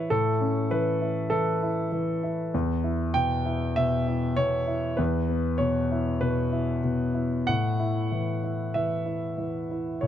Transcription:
0.00 0.12 E3 medium
0.00 0.28 E4 medium
0.00 0.11 B4 medium
0.00 0.11 C#5 loud
0.00 0.12 E5 medium
0.10 1.28 A2 medium
0.10 0.70 A4 medium
0.41 0.89 C#4 medium
0.71 1.20 E3 medium
0.71 1.31 B4 medium
1.02 1.50 E4 medium
1.30 1.80 E3 medium
1.30 2.52 A4 medium
1.63 2.11 E4 medium
1.92 2.41 E3 medium
2.23 2.54 E4 medium
2.54 3.73 E2 medium
2.84 3.33 E4 medium
3.14 3.64 B2 medium
3.14 3.76 G5 loud
3.46 3.95 E4 medium
3.76 4.26 B2 medium
3.76 4.37 E5 loud
4.08 4.56 E4 medium
4.36 4.87 B2 medium
4.36 4.98 C#5 loud
4.67 5.17 E4 medium
4.97 6.18 E2 medium
4.97 5.60 B4 medium
5.29 5.79 B3 medium
5.58 6.09 B2 medium
5.58 6.21 C#5 medium
5.92 6.41 E4 medium
6.21 6.71 B2 medium
6.21 7.48 B4 medium
6.52 7.03 E4 medium
6.84 7.35 B2 soft
7.14 7.48 E4 medium
7.47 8.71 A2 medium
7.47 8.74 F#5 loud
7.80 8.30 E4 medium
8.12 8.62 E3 soft
8.44 8.94 E4 soft
8.74 9.26 E3 medium
8.74 10.03 E5 medium
9.06 9.58 E4 soft
9.38 9.90 E3 soft
9.71 10.07 E4 soft
10.01 10.07 A2 medium
10.01 10.07 C#5 medium

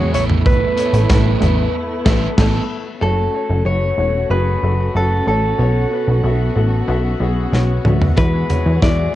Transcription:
0.00 0.14 E2 loud
0.00 0.12 E3 medium
0.00 0.13 E3 medium
0.00 0.14 G#3 medium
0.00 0.16 G#3 medium
0.00 0.13 B3 medium
0.00 0.12 E4 medium
0.00 0.13 F#4 medium
0.00 0.16 F#4 medium
0.00 0.11 G#4 medium
0.00 0.15 G#4 loud
0.00 0.16 B4 medium
0.00 0.11 C#5 loud
0.00 0.15 D5 medium
0.00 0.14 E5 medium
0.13 0.66 A1 loud
0.13 1.06 A2 medium
0.13 0.20 A3 medium
0.13 3.00 A3 medium
0.13 0.83 A3 medium
0.13 3.00 B3 medium
0.13 0.78 B3 medium
0.13 3.00 E4 medium
0.13 0.77 E4 medium
0.13 0.76 A4 medium
0.13 0.65 A4 medium
0.13 0.23 C#5 medium
0.13 0.65 E5 medium
0.13 closed hi-hat medium
0.19 0.68 B3 medium
0.30 floor tom medium
0.46 2.35 B4 medium
0.46 kick loud
0.46 closed hi-hat medium
0.77 1.02 B3 medium
0.77 1.09 B3 soft
0.77 1.10 E4 soft
0.77 1.09 A4 medium
0.77 1.03 A4 medium
0.77 1.03 C#5 medium
0.77 closed hi-hat medium
0.93 1.07 A1 medium
0.93 closed hi-hat medium
1.09 1.36 A1 medium
1.09 1.42 A3 medium
1.09 1.35 B3 medium
1.09 1.42 B3 medium
1.09 1.42 E4 medium
1.09 1.35 A4 medium
1.09 1.41 A4 medium
1.09 1.35 B4 medium
1.09 kick loud
1.09 snare medium
1.09 closed hi-hat medium
1.41 1.68 A1 medium
1.41 1.67 B3 medium
1.41 1.75 E4 medium
1.41 1.67 A4 medium
1.41 1.74 A4 medium
1.41 1.68 E5 medium
1.41 closed hi-hat medium
1.41 floor tom medium
1.45 1.76 B3 soft
2.05 2.28 A1 loud
2.05 2.27 B3 medium
2.05 2.29 B3 medium
2.05 2.29 E4 medium
2.05 2.28 A4 medium
2.05 2.28 E5 medium
2.05 kick loud
2.05 snare loud
2.05 crash medium
2.37 2.60 A1 loud
2.37 2.60 A3 medium
2.37 2.59 B3 medium
2.37 2.61 B3 medium
2.37 2.61 E4 medium
2.37 2.60 A4 medium
2.37 2.61 A4 medium
2.37 kick loud
2.37 snare loud
2.37 crash medium
3.01 3.28 F#1 loud
3.01 3.27 A3 medium
3.01 5.57 A3 medium
3.01 8.13 C#4 medium
3.01 9.15 F#4 medium
3.01 3.28 F#4 medium
3.01 3.63 A4 medium
3.01 3.28 C#5 medium
3.34 3.60 A3 medium
3.34 3.60 F#4 medium
3.34 3.61 C#5 medium
3.50 3.63 F#1 medium
3.65 3.92 F#1 medium
3.65 3.91 A3 medium
3.65 3.92 F#4 medium
3.65 3.92 B4 medium
3.65 4.31 C#5 medium
3.98 4.25 E1 medium
3.98 4.24 A3 medium
3.98 4.24 F#4 medium
3.98 4.25 C#5 medium
4.30 4.57 F#1 loud
4.30 4.56 A3 medium
4.30 4.57 F#4 medium
4.30 4.57 G#4 medium
4.30 4.96 B4 medium
4.63 4.90 F#1 medium
4.63 4.88 A3 medium
4.63 4.89 F#4 medium
4.63 4.89 A4 medium
4.94 5.22 F#1 medium
4.94 5.20 A3 medium
4.94 5.21 F#4 medium
4.94 5.27 A4 medium
4.94 5.21 B4 medium
5.26 5.54 A1 medium
5.26 5.52 A3 medium
5.26 5.53 F#4 medium
5.26 7.17 A4 medium
5.26 5.53 C#5 medium
5.58 5.86 B1 loud
5.58 6.53 B2 soft
5.58 5.84 B3 medium
5.58 9.15 B3 medium
5.58 5.85 F#4 medium
5.58 5.85 C#5 medium
5.91 6.17 B3 medium
5.91 6.18 F#4 medium
5.91 6.18 B4 medium
6.08 6.21 B1 medium
6.24 6.50 B1 medium
6.24 6.49 B3 medium
6.24 6.50 F#4 medium
6.24 6.50 E5 medium
6.56 6.83 A1 medium
6.56 6.81 B3 medium
6.56 6.82 F#4 medium
6.56 6.82 A4 medium
6.88 7.15 B1 loud
6.88 7.13 B3 medium
6.88 7.14 F#4 medium
6.88 7.15 E5 loud
7.20 7.47 B1 medium
7.20 7.46 B3 medium
7.20 7.46 F#4 medium
7.20 7.47 G#4 medium
7.52 7.79 B1 medium
7.52 7.78 B3 medium
7.52 7.78 F#4 medium
7.52 7.79 C#5 medium
7.52 snare soft
7.84 8.12 D2 medium
7.84 8.10 B3 medium
7.84 8.11 F#4 medium
7.84 8.11 E5 medium
7.84 mid tom medium
8.01 floor tom medium
8.16 8.44 E2 loud
8.16 9.10 E3 medium
8.16 9.15 E3 medium
8.16 8.42 G#3 medium
8.16 8.43 F#4 medium
8.16 9.15 G#4 medium
8.16 8.82 B4 medium
8.16 8.43 E5 medium
8.16 kick loud
8.16 closed hi-hat medium
8.49 8.75 G#3 medium
8.49 8.75 F#4 medium
8.49 8.76 C#5 medium
8.49 closed hi-hat medium
8.49 floor tom medium
8.66 8.79 E2 medium
8.81 9.09 E2 medium
8.81 9.07 G#3 medium
8.81 9.07 F#4 medium
8.81 9.12 D5 medium
8.81 9.08 E5 medium
8.81 kick loud
8.81 snare medium
8.81 closed hi-hat medium

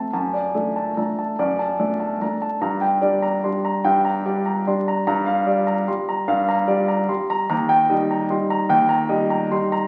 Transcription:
0.00 0.12 A5 soft
0.13 0.54 F#2 medium
0.13 0.46 A5 medium
0.33 0.67 D5 medium
0.55 0.94 A3 soft
0.55 0.94 D4 soft
0.55 0.89 A4 medium
0.76 1.10 A5 medium
0.97 1.35 A3 soft
0.97 1.35 D4 soft
0.97 1.19 A#5 soft
1.19 1.51 A5 medium
1.39 1.78 F#2 medium
1.39 1.71 D5 medium
1.59 1.92 A5 medium
1.79 2.17 A3 medium
1.79 2.17 D4 medium
1.79 2.13 D5 medium
2.00 2.34 A5 medium
2.22 2.58 A3 soft
2.22 2.59 D4 medium
2.22 2.42 A#5 medium
2.42 2.62 A5 medium
2.61 3.00 G2 medium
2.61 2.94 A#5 medium
2.81 3.14 G5 medium
3.02 3.40 G3 medium
3.02 3.40 D4 medium
3.02 3.35 D5 medium
3.22 3.57 A#5 medium
3.44 3.81 G3 medium
3.44 3.82 D4 medium
3.44 3.65 C6 soft
3.65 3.97 A#5 medium
3.84 4.24 G2 medium
3.84 4.17 G5 medium
4.05 4.38 A#5 medium
4.26 4.63 G3 medium
4.26 4.64 D4 medium
4.26 4.59 D5 medium
4.46 4.79 A#5 medium
4.67 5.03 G3 medium
4.67 5.04 D4 medium
4.67 4.88 C6 soft
4.88 5.05 A#5 medium
5.07 5.46 G2 medium
5.07 5.38 A#5 medium
5.26 5.59 F5 medium
5.46 5.84 G3 medium
5.46 5.80 D5 medium
5.67 6.00 A#5 medium
5.88 6.24 G3 medium
5.88 6.09 C6 medium
6.09 6.40 A#5 medium
6.28 6.66 G2 medium
6.28 6.60 F5 medium
6.48 6.80 A#5 medium
6.68 7.05 G3 medium
6.68 7.01 D5 medium
6.88 7.22 A#5 medium
7.09 7.46 G3 medium
7.09 7.30 C6 medium
7.30 7.48 A#5 medium
7.50 7.88 D#2 medium
7.50 7.81 A#5 medium
7.69 8.02 G5 medium
7.90 8.26 G3 medium
7.90 8.27 D#4 medium
7.90 8.22 D#5 medium
8.11 8.43 A#5 medium
8.30 8.65 G3 medium
8.30 8.66 D#4 medium
8.30 8.50 C6 medium
8.50 8.81 A#5 medium
8.69 9.08 D#2 medium
8.69 9.01 G5 medium
8.89 9.22 A#5 medium
9.09 9.48 G3 medium
9.09 9.48 D#4 medium
9.09 9.43 D#5 medium
9.30 9.64 A#5 medium
9.51 9.87 G3 medium
9.51 9.87 D#4 medium
9.51 9.72 C6 medium
9.72 9.87 A#5 medium

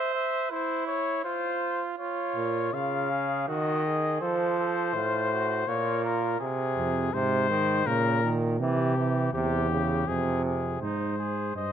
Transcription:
0.00 0.53 C5 medium
0.00 0.14 E5 medium
0.15 0.50 E5 medium
0.51 1.24 E4 medium
0.51 0.86 C5 medium
0.87 1.23 C#5 medium
1.24 1.97 F4 medium
1.24 1.82 C5 medium
1.98 2.69 F4 medium
1.98 2.75 C#5 medium
2.36 2.71 A#2 medium
2.73 3.47 C#3 medium
2.73 3.10 F4 medium
2.73 3.48 F5 medium
3.11 3.50 G#4 medium
3.48 4.20 D#3 medium
3.48 3.85 F#4 medium
3.48 4.20 D#5 medium
3.85 4.24 G#4 medium
4.21 4.96 F3 medium
4.21 4.58 A4 medium
4.21 5.69 C5 medium
4.59 4.94 A4 medium
4.94 5.67 A2 medium
4.94 5.31 F4 medium
5.31 5.67 F#4 medium
5.68 6.39 A#2 medium
5.68 6.39 F4 medium
5.68 6.04 C#5 medium
6.04 6.40 A#4 medium
6.40 7.12 C3 medium
6.40 7.15 G#4 medium
6.77 7.11 F2 medium
7.14 7.85 G#2 medium
7.14 7.49 C3 medium
7.14 7.88 C5 medium
7.50 7.88 D#3 medium
7.86 8.61 A#2 medium
7.86 8.22 C#3 medium
7.86 8.34 A#4 medium
8.23 8.59 D#3 medium
8.60 9.32 C3 medium
8.60 8.96 E3 medium
8.60 9.29 G4 medium
8.97 9.33 E3 medium
9.33 10.06 E2 medium
9.33 9.70 C3 medium
9.33 10.09 G4 medium
9.70 10.07 C#3 medium
10.07 10.80 F2 medium
10.07 10.80 C3 medium
10.07 10.44 G#4 medium
10.45 10.81 G#4 medium
10.81 11.52 G#2 medium
10.81 11.16 D#4 medium
10.81 11.52 C5 medium
11.18 11.55 G#4 medium
11.55 11.72 G2 medium
11.55 11.72 C5 medium
11.55 11.72 D#5 medium

